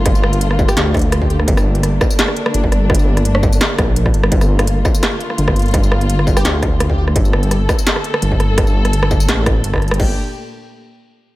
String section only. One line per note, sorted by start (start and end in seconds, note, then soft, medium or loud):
0.00 9.96 D3 medium
0.00 9.96 A3 medium
0.00 9.96 A#3 medium
0.00 1.47 F4 medium
1.48 4.31 D4 medium
4.32 7.15 F4 medium
7.16 9.99 A4 loud
10.00 10.16 A#2 medium
10.00 10.16 A3 medium
10.00 10.16 D4 medium
10.00 10.16 G4 medium